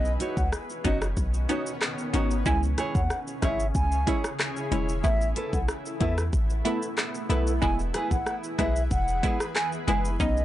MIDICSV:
0, 0, Header, 1, 7, 480
1, 0, Start_track
1, 0, Key_signature, 4, "major"
1, 0, Tempo, 645161
1, 1829, Time_signature, 4, 2, 24, 8
1, 7774, End_track
2, 0, Start_track
2, 0, Title_t, "Flute"
2, 0, Program_c, 0, 73
2, 0, Note_on_c, 0, 75, 100
2, 93, Note_off_c, 0, 75, 0
2, 278, Note_on_c, 0, 78, 86
2, 364, Note_off_c, 0, 78, 0
2, 631, Note_on_c, 0, 75, 82
2, 728, Note_off_c, 0, 75, 0
2, 1829, Note_on_c, 0, 80, 100
2, 1927, Note_off_c, 0, 80, 0
2, 2069, Note_on_c, 0, 80, 76
2, 2167, Note_off_c, 0, 80, 0
2, 2196, Note_on_c, 0, 78, 89
2, 2380, Note_off_c, 0, 78, 0
2, 2548, Note_on_c, 0, 76, 87
2, 2732, Note_off_c, 0, 76, 0
2, 2789, Note_on_c, 0, 80, 104
2, 3134, Note_off_c, 0, 80, 0
2, 3748, Note_on_c, 0, 76, 106
2, 3933, Note_off_c, 0, 76, 0
2, 4117, Note_on_c, 0, 78, 74
2, 4203, Note_off_c, 0, 78, 0
2, 4469, Note_on_c, 0, 76, 77
2, 4567, Note_off_c, 0, 76, 0
2, 5670, Note_on_c, 0, 80, 117
2, 5767, Note_off_c, 0, 80, 0
2, 5908, Note_on_c, 0, 80, 86
2, 6006, Note_off_c, 0, 80, 0
2, 6036, Note_on_c, 0, 78, 82
2, 6220, Note_off_c, 0, 78, 0
2, 6389, Note_on_c, 0, 76, 84
2, 6573, Note_off_c, 0, 76, 0
2, 6628, Note_on_c, 0, 78, 104
2, 6974, Note_off_c, 0, 78, 0
2, 7108, Note_on_c, 0, 80, 88
2, 7206, Note_off_c, 0, 80, 0
2, 7347, Note_on_c, 0, 80, 92
2, 7445, Note_off_c, 0, 80, 0
2, 7588, Note_on_c, 0, 75, 102
2, 7772, Note_off_c, 0, 75, 0
2, 7774, End_track
3, 0, Start_track
3, 0, Title_t, "Nylon-string guitar"
3, 0, Program_c, 1, 24
3, 146, Note_on_c, 1, 63, 88
3, 153, Note_on_c, 1, 66, 84
3, 159, Note_on_c, 1, 73, 88
3, 305, Note_off_c, 1, 63, 0
3, 308, Note_off_c, 1, 66, 0
3, 311, Note_off_c, 1, 73, 0
3, 626, Note_on_c, 1, 63, 87
3, 633, Note_on_c, 1, 66, 95
3, 639, Note_on_c, 1, 73, 100
3, 784, Note_off_c, 1, 63, 0
3, 788, Note_off_c, 1, 66, 0
3, 791, Note_off_c, 1, 73, 0
3, 1105, Note_on_c, 1, 63, 88
3, 1113, Note_on_c, 1, 66, 83
3, 1119, Note_on_c, 1, 73, 97
3, 1264, Note_off_c, 1, 63, 0
3, 1268, Note_off_c, 1, 66, 0
3, 1271, Note_off_c, 1, 73, 0
3, 1586, Note_on_c, 1, 63, 94
3, 1593, Note_on_c, 1, 66, 98
3, 1599, Note_on_c, 1, 73, 105
3, 1744, Note_off_c, 1, 63, 0
3, 1748, Note_off_c, 1, 66, 0
3, 1751, Note_off_c, 1, 73, 0
3, 2065, Note_on_c, 1, 64, 88
3, 2072, Note_on_c, 1, 68, 85
3, 2079, Note_on_c, 1, 73, 97
3, 2224, Note_off_c, 1, 64, 0
3, 2228, Note_off_c, 1, 68, 0
3, 2231, Note_off_c, 1, 73, 0
3, 2545, Note_on_c, 1, 64, 85
3, 2553, Note_on_c, 1, 68, 93
3, 2559, Note_on_c, 1, 73, 89
3, 2704, Note_off_c, 1, 64, 0
3, 2708, Note_off_c, 1, 68, 0
3, 2711, Note_off_c, 1, 73, 0
3, 3024, Note_on_c, 1, 64, 78
3, 3032, Note_on_c, 1, 68, 89
3, 3038, Note_on_c, 1, 73, 91
3, 3184, Note_off_c, 1, 64, 0
3, 3188, Note_off_c, 1, 68, 0
3, 3191, Note_off_c, 1, 73, 0
3, 3505, Note_on_c, 1, 64, 81
3, 3513, Note_on_c, 1, 68, 86
3, 3519, Note_on_c, 1, 73, 94
3, 3664, Note_off_c, 1, 64, 0
3, 3668, Note_off_c, 1, 68, 0
3, 3671, Note_off_c, 1, 73, 0
3, 3984, Note_on_c, 1, 64, 82
3, 3992, Note_on_c, 1, 69, 87
3, 3998, Note_on_c, 1, 71, 96
3, 4144, Note_off_c, 1, 64, 0
3, 4148, Note_off_c, 1, 69, 0
3, 4151, Note_off_c, 1, 71, 0
3, 4465, Note_on_c, 1, 64, 84
3, 4472, Note_on_c, 1, 69, 85
3, 4478, Note_on_c, 1, 71, 99
3, 4624, Note_off_c, 1, 64, 0
3, 4628, Note_off_c, 1, 69, 0
3, 4631, Note_off_c, 1, 71, 0
3, 4945, Note_on_c, 1, 64, 84
3, 4952, Note_on_c, 1, 69, 80
3, 4958, Note_on_c, 1, 71, 94
3, 5104, Note_off_c, 1, 64, 0
3, 5108, Note_off_c, 1, 69, 0
3, 5111, Note_off_c, 1, 71, 0
3, 5425, Note_on_c, 1, 64, 85
3, 5432, Note_on_c, 1, 69, 96
3, 5438, Note_on_c, 1, 71, 101
3, 5584, Note_off_c, 1, 64, 0
3, 5588, Note_off_c, 1, 69, 0
3, 5591, Note_off_c, 1, 71, 0
3, 5906, Note_on_c, 1, 64, 82
3, 5913, Note_on_c, 1, 68, 85
3, 5919, Note_on_c, 1, 71, 92
3, 6064, Note_off_c, 1, 64, 0
3, 6068, Note_off_c, 1, 68, 0
3, 6071, Note_off_c, 1, 71, 0
3, 6385, Note_on_c, 1, 64, 84
3, 6393, Note_on_c, 1, 68, 93
3, 6399, Note_on_c, 1, 71, 101
3, 6544, Note_off_c, 1, 64, 0
3, 6548, Note_off_c, 1, 68, 0
3, 6551, Note_off_c, 1, 71, 0
3, 6865, Note_on_c, 1, 64, 87
3, 6872, Note_on_c, 1, 68, 98
3, 6879, Note_on_c, 1, 71, 87
3, 7024, Note_off_c, 1, 64, 0
3, 7028, Note_off_c, 1, 68, 0
3, 7031, Note_off_c, 1, 71, 0
3, 7344, Note_on_c, 1, 64, 76
3, 7352, Note_on_c, 1, 68, 84
3, 7358, Note_on_c, 1, 71, 90
3, 7504, Note_off_c, 1, 64, 0
3, 7508, Note_off_c, 1, 68, 0
3, 7511, Note_off_c, 1, 71, 0
3, 7774, End_track
4, 0, Start_track
4, 0, Title_t, "Synth stab"
4, 0, Program_c, 2, 62
4, 0, Note_on_c, 2, 59, 94
4, 0, Note_on_c, 2, 61, 85
4, 0, Note_on_c, 2, 63, 104
4, 352, Note_off_c, 2, 59, 0
4, 353, Note_off_c, 2, 61, 0
4, 354, Note_off_c, 2, 63, 0
4, 628, Note_on_c, 2, 59, 79
4, 630, Note_on_c, 2, 61, 71
4, 632, Note_on_c, 2, 63, 89
4, 740, Note_off_c, 2, 59, 0
4, 741, Note_off_c, 2, 61, 0
4, 742, Note_off_c, 2, 63, 0
4, 1108, Note_on_c, 2, 59, 82
4, 1111, Note_on_c, 2, 61, 72
4, 1113, Note_on_c, 2, 63, 86
4, 1220, Note_off_c, 2, 59, 0
4, 1221, Note_off_c, 2, 61, 0
4, 1222, Note_off_c, 2, 63, 0
4, 1588, Note_on_c, 2, 59, 81
4, 1591, Note_on_c, 2, 61, 72
4, 1593, Note_on_c, 2, 63, 87
4, 1811, Note_off_c, 2, 59, 0
4, 1812, Note_off_c, 2, 61, 0
4, 1813, Note_off_c, 2, 63, 0
4, 1828, Note_on_c, 2, 56, 89
4, 1830, Note_on_c, 2, 61, 87
4, 1832, Note_on_c, 2, 64, 101
4, 2273, Note_off_c, 2, 56, 0
4, 2274, Note_off_c, 2, 61, 0
4, 2275, Note_off_c, 2, 64, 0
4, 2548, Note_on_c, 2, 56, 82
4, 2550, Note_on_c, 2, 61, 75
4, 2553, Note_on_c, 2, 64, 87
4, 2660, Note_off_c, 2, 56, 0
4, 2661, Note_off_c, 2, 61, 0
4, 2662, Note_off_c, 2, 64, 0
4, 3027, Note_on_c, 2, 56, 80
4, 3029, Note_on_c, 2, 61, 74
4, 3032, Note_on_c, 2, 64, 89
4, 3139, Note_off_c, 2, 56, 0
4, 3140, Note_off_c, 2, 61, 0
4, 3142, Note_off_c, 2, 64, 0
4, 3508, Note_on_c, 2, 56, 83
4, 3510, Note_on_c, 2, 61, 73
4, 3512, Note_on_c, 2, 64, 86
4, 3731, Note_off_c, 2, 56, 0
4, 3732, Note_off_c, 2, 61, 0
4, 3733, Note_off_c, 2, 64, 0
4, 3748, Note_on_c, 2, 57, 95
4, 3750, Note_on_c, 2, 59, 86
4, 3752, Note_on_c, 2, 64, 101
4, 4193, Note_off_c, 2, 57, 0
4, 4194, Note_off_c, 2, 59, 0
4, 4195, Note_off_c, 2, 64, 0
4, 4467, Note_on_c, 2, 57, 79
4, 4470, Note_on_c, 2, 59, 71
4, 4472, Note_on_c, 2, 64, 86
4, 4579, Note_off_c, 2, 57, 0
4, 4580, Note_off_c, 2, 59, 0
4, 4582, Note_off_c, 2, 64, 0
4, 4947, Note_on_c, 2, 57, 79
4, 4949, Note_on_c, 2, 59, 73
4, 4951, Note_on_c, 2, 64, 91
4, 5059, Note_off_c, 2, 57, 0
4, 5060, Note_off_c, 2, 59, 0
4, 5061, Note_off_c, 2, 64, 0
4, 5427, Note_on_c, 2, 57, 81
4, 5429, Note_on_c, 2, 59, 69
4, 5431, Note_on_c, 2, 64, 88
4, 5650, Note_off_c, 2, 57, 0
4, 5651, Note_off_c, 2, 59, 0
4, 5652, Note_off_c, 2, 64, 0
4, 5667, Note_on_c, 2, 56, 91
4, 5669, Note_on_c, 2, 59, 88
4, 5671, Note_on_c, 2, 64, 109
4, 6112, Note_off_c, 2, 56, 0
4, 6113, Note_off_c, 2, 59, 0
4, 6114, Note_off_c, 2, 64, 0
4, 6387, Note_on_c, 2, 56, 79
4, 6389, Note_on_c, 2, 59, 73
4, 6392, Note_on_c, 2, 64, 91
4, 6499, Note_off_c, 2, 56, 0
4, 6500, Note_off_c, 2, 59, 0
4, 6501, Note_off_c, 2, 64, 0
4, 6867, Note_on_c, 2, 56, 78
4, 6869, Note_on_c, 2, 59, 75
4, 6871, Note_on_c, 2, 64, 86
4, 6979, Note_off_c, 2, 56, 0
4, 6980, Note_off_c, 2, 59, 0
4, 6981, Note_off_c, 2, 64, 0
4, 7347, Note_on_c, 2, 56, 84
4, 7349, Note_on_c, 2, 59, 72
4, 7352, Note_on_c, 2, 64, 91
4, 7570, Note_off_c, 2, 56, 0
4, 7571, Note_off_c, 2, 59, 0
4, 7573, Note_off_c, 2, 64, 0
4, 7588, Note_on_c, 2, 59, 93
4, 7590, Note_on_c, 2, 61, 84
4, 7593, Note_on_c, 2, 63, 106
4, 7774, Note_off_c, 2, 59, 0
4, 7774, Note_off_c, 2, 61, 0
4, 7774, Note_off_c, 2, 63, 0
4, 7774, End_track
5, 0, Start_track
5, 0, Title_t, "Ambient pad"
5, 0, Program_c, 3, 92
5, 0, Note_on_c, 3, 51, 89
5, 0, Note_on_c, 3, 59, 80
5, 0, Note_on_c, 3, 61, 94
5, 1810, Note_off_c, 3, 61, 0
5, 1811, Note_off_c, 3, 51, 0
5, 1811, Note_off_c, 3, 59, 0
5, 1830, Note_on_c, 3, 64, 79
5, 1831, Note_on_c, 3, 49, 84
5, 1831, Note_on_c, 3, 68, 93
5, 1832, Note_on_c, 3, 61, 77
5, 3731, Note_off_c, 3, 49, 0
5, 3731, Note_off_c, 3, 68, 0
5, 3732, Note_off_c, 3, 61, 0
5, 3750, Note_on_c, 3, 57, 85
5, 3750, Note_on_c, 3, 59, 78
5, 5651, Note_off_c, 3, 57, 0
5, 5651, Note_off_c, 3, 59, 0
5, 5667, Note_on_c, 3, 71, 97
5, 5668, Note_on_c, 3, 52, 85
5, 5668, Note_on_c, 3, 68, 82
5, 7560, Note_off_c, 3, 64, 0
5, 7569, Note_off_c, 3, 71, 0
5, 7570, Note_off_c, 3, 52, 0
5, 7570, Note_off_c, 3, 68, 0
5, 7588, Note_on_c, 3, 61, 94
5, 7589, Note_on_c, 3, 51, 88
5, 7589, Note_on_c, 3, 59, 75
5, 7774, Note_off_c, 3, 51, 0
5, 7774, Note_off_c, 3, 59, 0
5, 7774, Note_off_c, 3, 61, 0
5, 7774, End_track
6, 0, Start_track
6, 0, Title_t, "808-style bass"
6, 0, Program_c, 4, 38
6, 0, Note_on_c, 4, 35, 112
6, 128, Note_off_c, 4, 35, 0
6, 276, Note_on_c, 4, 37, 89
6, 379, Note_off_c, 4, 37, 0
6, 631, Note_on_c, 4, 30, 89
6, 849, Note_off_c, 4, 30, 0
6, 871, Note_on_c, 4, 35, 105
6, 1088, Note_off_c, 4, 35, 0
6, 1591, Note_on_c, 4, 32, 96
6, 1808, Note_off_c, 4, 32, 0
6, 1830, Note_on_c, 4, 37, 114
6, 2048, Note_off_c, 4, 37, 0
6, 2195, Note_on_c, 4, 39, 87
6, 2298, Note_off_c, 4, 39, 0
6, 2550, Note_on_c, 4, 32, 92
6, 2768, Note_off_c, 4, 32, 0
6, 2790, Note_on_c, 4, 37, 100
6, 3008, Note_off_c, 4, 37, 0
6, 3510, Note_on_c, 4, 28, 101
6, 3728, Note_off_c, 4, 28, 0
6, 3750, Note_on_c, 4, 33, 114
6, 3968, Note_off_c, 4, 33, 0
6, 4116, Note_on_c, 4, 35, 96
6, 4219, Note_off_c, 4, 35, 0
6, 4470, Note_on_c, 4, 40, 87
6, 4688, Note_off_c, 4, 40, 0
6, 4710, Note_on_c, 4, 33, 102
6, 4928, Note_off_c, 4, 33, 0
6, 5429, Note_on_c, 4, 35, 97
6, 5647, Note_off_c, 4, 35, 0
6, 5670, Note_on_c, 4, 28, 101
6, 5888, Note_off_c, 4, 28, 0
6, 6035, Note_on_c, 4, 32, 84
6, 6138, Note_off_c, 4, 32, 0
6, 6390, Note_on_c, 4, 35, 96
6, 6608, Note_off_c, 4, 35, 0
6, 6630, Note_on_c, 4, 28, 115
6, 6848, Note_off_c, 4, 28, 0
6, 7349, Note_on_c, 4, 30, 98
6, 7567, Note_off_c, 4, 30, 0
6, 7589, Note_on_c, 4, 35, 112
6, 7774, Note_off_c, 4, 35, 0
6, 7774, End_track
7, 0, Start_track
7, 0, Title_t, "Drums"
7, 38, Note_on_c, 9, 82, 53
7, 113, Note_off_c, 9, 82, 0
7, 150, Note_on_c, 9, 42, 74
7, 150, Note_on_c, 9, 82, 54
7, 224, Note_off_c, 9, 42, 0
7, 224, Note_off_c, 9, 82, 0
7, 276, Note_on_c, 9, 36, 92
7, 277, Note_on_c, 9, 82, 72
7, 350, Note_off_c, 9, 36, 0
7, 352, Note_off_c, 9, 82, 0
7, 391, Note_on_c, 9, 37, 92
7, 392, Note_on_c, 9, 82, 77
7, 465, Note_off_c, 9, 37, 0
7, 466, Note_off_c, 9, 82, 0
7, 519, Note_on_c, 9, 82, 51
7, 593, Note_off_c, 9, 82, 0
7, 630, Note_on_c, 9, 42, 73
7, 630, Note_on_c, 9, 82, 54
7, 631, Note_on_c, 9, 36, 93
7, 704, Note_off_c, 9, 42, 0
7, 704, Note_off_c, 9, 82, 0
7, 705, Note_off_c, 9, 36, 0
7, 757, Note_on_c, 9, 37, 96
7, 757, Note_on_c, 9, 82, 74
7, 831, Note_off_c, 9, 37, 0
7, 832, Note_off_c, 9, 82, 0
7, 870, Note_on_c, 9, 36, 90
7, 870, Note_on_c, 9, 82, 83
7, 944, Note_off_c, 9, 82, 0
7, 945, Note_off_c, 9, 36, 0
7, 996, Note_on_c, 9, 82, 64
7, 1070, Note_off_c, 9, 82, 0
7, 1111, Note_on_c, 9, 42, 76
7, 1111, Note_on_c, 9, 82, 53
7, 1185, Note_off_c, 9, 42, 0
7, 1185, Note_off_c, 9, 82, 0
7, 1239, Note_on_c, 9, 82, 82
7, 1313, Note_off_c, 9, 82, 0
7, 1351, Note_on_c, 9, 37, 105
7, 1351, Note_on_c, 9, 39, 100
7, 1351, Note_on_c, 9, 82, 72
7, 1425, Note_off_c, 9, 82, 0
7, 1426, Note_off_c, 9, 37, 0
7, 1426, Note_off_c, 9, 39, 0
7, 1476, Note_on_c, 9, 82, 54
7, 1551, Note_off_c, 9, 82, 0
7, 1590, Note_on_c, 9, 42, 73
7, 1590, Note_on_c, 9, 82, 55
7, 1665, Note_off_c, 9, 42, 0
7, 1665, Note_off_c, 9, 82, 0
7, 1717, Note_on_c, 9, 82, 79
7, 1791, Note_off_c, 9, 82, 0
7, 1829, Note_on_c, 9, 82, 87
7, 1830, Note_on_c, 9, 36, 117
7, 1904, Note_off_c, 9, 36, 0
7, 1904, Note_off_c, 9, 82, 0
7, 1957, Note_on_c, 9, 82, 54
7, 2031, Note_off_c, 9, 82, 0
7, 2068, Note_on_c, 9, 37, 87
7, 2068, Note_on_c, 9, 42, 71
7, 2068, Note_on_c, 9, 82, 52
7, 2142, Note_off_c, 9, 42, 0
7, 2142, Note_off_c, 9, 82, 0
7, 2143, Note_off_c, 9, 37, 0
7, 2195, Note_on_c, 9, 36, 101
7, 2195, Note_on_c, 9, 82, 70
7, 2270, Note_off_c, 9, 36, 0
7, 2270, Note_off_c, 9, 82, 0
7, 2309, Note_on_c, 9, 37, 93
7, 2310, Note_on_c, 9, 82, 75
7, 2383, Note_off_c, 9, 37, 0
7, 2384, Note_off_c, 9, 82, 0
7, 2436, Note_on_c, 9, 82, 53
7, 2510, Note_off_c, 9, 82, 0
7, 2547, Note_on_c, 9, 37, 88
7, 2548, Note_on_c, 9, 42, 74
7, 2548, Note_on_c, 9, 82, 52
7, 2550, Note_on_c, 9, 36, 86
7, 2622, Note_off_c, 9, 37, 0
7, 2622, Note_off_c, 9, 42, 0
7, 2622, Note_off_c, 9, 82, 0
7, 2624, Note_off_c, 9, 36, 0
7, 2676, Note_on_c, 9, 82, 75
7, 2750, Note_off_c, 9, 82, 0
7, 2789, Note_on_c, 9, 82, 82
7, 2790, Note_on_c, 9, 36, 91
7, 2863, Note_off_c, 9, 82, 0
7, 2864, Note_off_c, 9, 36, 0
7, 2915, Note_on_c, 9, 82, 63
7, 2989, Note_off_c, 9, 82, 0
7, 3030, Note_on_c, 9, 36, 98
7, 3030, Note_on_c, 9, 42, 74
7, 3030, Note_on_c, 9, 82, 50
7, 3104, Note_off_c, 9, 36, 0
7, 3104, Note_off_c, 9, 42, 0
7, 3104, Note_off_c, 9, 82, 0
7, 3157, Note_on_c, 9, 37, 98
7, 3158, Note_on_c, 9, 82, 79
7, 3231, Note_off_c, 9, 37, 0
7, 3232, Note_off_c, 9, 82, 0
7, 3270, Note_on_c, 9, 37, 106
7, 3270, Note_on_c, 9, 39, 107
7, 3270, Note_on_c, 9, 82, 72
7, 3344, Note_off_c, 9, 82, 0
7, 3345, Note_off_c, 9, 37, 0
7, 3345, Note_off_c, 9, 39, 0
7, 3396, Note_on_c, 9, 82, 51
7, 3470, Note_off_c, 9, 82, 0
7, 3510, Note_on_c, 9, 42, 75
7, 3510, Note_on_c, 9, 82, 55
7, 3585, Note_off_c, 9, 42, 0
7, 3585, Note_off_c, 9, 82, 0
7, 3637, Note_on_c, 9, 82, 77
7, 3712, Note_off_c, 9, 82, 0
7, 3749, Note_on_c, 9, 82, 90
7, 3750, Note_on_c, 9, 36, 121
7, 3824, Note_off_c, 9, 36, 0
7, 3824, Note_off_c, 9, 82, 0
7, 3878, Note_on_c, 9, 82, 53
7, 3952, Note_off_c, 9, 82, 0
7, 3989, Note_on_c, 9, 42, 69
7, 3989, Note_on_c, 9, 82, 51
7, 4063, Note_off_c, 9, 42, 0
7, 4063, Note_off_c, 9, 82, 0
7, 4116, Note_on_c, 9, 36, 97
7, 4117, Note_on_c, 9, 82, 75
7, 4190, Note_off_c, 9, 36, 0
7, 4191, Note_off_c, 9, 82, 0
7, 4230, Note_on_c, 9, 37, 100
7, 4231, Note_on_c, 9, 82, 76
7, 4304, Note_off_c, 9, 37, 0
7, 4305, Note_off_c, 9, 82, 0
7, 4358, Note_on_c, 9, 82, 55
7, 4432, Note_off_c, 9, 82, 0
7, 4469, Note_on_c, 9, 42, 76
7, 4469, Note_on_c, 9, 82, 55
7, 4470, Note_on_c, 9, 36, 88
7, 4543, Note_off_c, 9, 42, 0
7, 4543, Note_off_c, 9, 82, 0
7, 4545, Note_off_c, 9, 36, 0
7, 4597, Note_on_c, 9, 37, 93
7, 4597, Note_on_c, 9, 82, 74
7, 4672, Note_off_c, 9, 37, 0
7, 4672, Note_off_c, 9, 82, 0
7, 4710, Note_on_c, 9, 36, 94
7, 4710, Note_on_c, 9, 82, 84
7, 4784, Note_off_c, 9, 82, 0
7, 4785, Note_off_c, 9, 36, 0
7, 4836, Note_on_c, 9, 82, 64
7, 4910, Note_off_c, 9, 82, 0
7, 4949, Note_on_c, 9, 42, 72
7, 4949, Note_on_c, 9, 82, 52
7, 5024, Note_off_c, 9, 42, 0
7, 5024, Note_off_c, 9, 82, 0
7, 5078, Note_on_c, 9, 82, 80
7, 5152, Note_off_c, 9, 82, 0
7, 5190, Note_on_c, 9, 82, 77
7, 5191, Note_on_c, 9, 37, 101
7, 5191, Note_on_c, 9, 39, 100
7, 5265, Note_off_c, 9, 37, 0
7, 5265, Note_off_c, 9, 39, 0
7, 5265, Note_off_c, 9, 82, 0
7, 5316, Note_on_c, 9, 82, 51
7, 5391, Note_off_c, 9, 82, 0
7, 5431, Note_on_c, 9, 42, 76
7, 5431, Note_on_c, 9, 82, 53
7, 5506, Note_off_c, 9, 42, 0
7, 5506, Note_off_c, 9, 82, 0
7, 5558, Note_on_c, 9, 82, 78
7, 5632, Note_off_c, 9, 82, 0
7, 5669, Note_on_c, 9, 82, 88
7, 5670, Note_on_c, 9, 36, 122
7, 5743, Note_off_c, 9, 82, 0
7, 5744, Note_off_c, 9, 36, 0
7, 5798, Note_on_c, 9, 82, 52
7, 5872, Note_off_c, 9, 82, 0
7, 5909, Note_on_c, 9, 42, 75
7, 5909, Note_on_c, 9, 82, 53
7, 5910, Note_on_c, 9, 37, 91
7, 5983, Note_off_c, 9, 42, 0
7, 5983, Note_off_c, 9, 82, 0
7, 5984, Note_off_c, 9, 37, 0
7, 6035, Note_on_c, 9, 36, 96
7, 6036, Note_on_c, 9, 82, 71
7, 6110, Note_off_c, 9, 36, 0
7, 6110, Note_off_c, 9, 82, 0
7, 6149, Note_on_c, 9, 37, 94
7, 6150, Note_on_c, 9, 82, 76
7, 6224, Note_off_c, 9, 37, 0
7, 6224, Note_off_c, 9, 82, 0
7, 6277, Note_on_c, 9, 82, 53
7, 6351, Note_off_c, 9, 82, 0
7, 6389, Note_on_c, 9, 37, 86
7, 6389, Note_on_c, 9, 42, 73
7, 6389, Note_on_c, 9, 82, 51
7, 6390, Note_on_c, 9, 36, 89
7, 6463, Note_off_c, 9, 37, 0
7, 6464, Note_off_c, 9, 36, 0
7, 6464, Note_off_c, 9, 42, 0
7, 6464, Note_off_c, 9, 82, 0
7, 6517, Note_on_c, 9, 82, 73
7, 6591, Note_off_c, 9, 82, 0
7, 6629, Note_on_c, 9, 82, 81
7, 6630, Note_on_c, 9, 36, 93
7, 6703, Note_off_c, 9, 82, 0
7, 6704, Note_off_c, 9, 36, 0
7, 6755, Note_on_c, 9, 82, 64
7, 6830, Note_off_c, 9, 82, 0
7, 6869, Note_on_c, 9, 36, 99
7, 6869, Note_on_c, 9, 42, 72
7, 6869, Note_on_c, 9, 82, 54
7, 6944, Note_off_c, 9, 36, 0
7, 6944, Note_off_c, 9, 42, 0
7, 6944, Note_off_c, 9, 82, 0
7, 6996, Note_on_c, 9, 37, 97
7, 6998, Note_on_c, 9, 82, 80
7, 7071, Note_off_c, 9, 37, 0
7, 7072, Note_off_c, 9, 82, 0
7, 7109, Note_on_c, 9, 82, 73
7, 7110, Note_on_c, 9, 37, 104
7, 7110, Note_on_c, 9, 39, 107
7, 7183, Note_off_c, 9, 82, 0
7, 7184, Note_off_c, 9, 37, 0
7, 7184, Note_off_c, 9, 39, 0
7, 7235, Note_on_c, 9, 82, 52
7, 7309, Note_off_c, 9, 82, 0
7, 7350, Note_on_c, 9, 42, 72
7, 7350, Note_on_c, 9, 82, 53
7, 7424, Note_off_c, 9, 42, 0
7, 7424, Note_off_c, 9, 82, 0
7, 7477, Note_on_c, 9, 82, 81
7, 7551, Note_off_c, 9, 82, 0
7, 7588, Note_on_c, 9, 82, 85
7, 7589, Note_on_c, 9, 36, 116
7, 7662, Note_off_c, 9, 82, 0
7, 7663, Note_off_c, 9, 36, 0
7, 7717, Note_on_c, 9, 82, 52
7, 7774, Note_off_c, 9, 82, 0
7, 7774, End_track
0, 0, End_of_file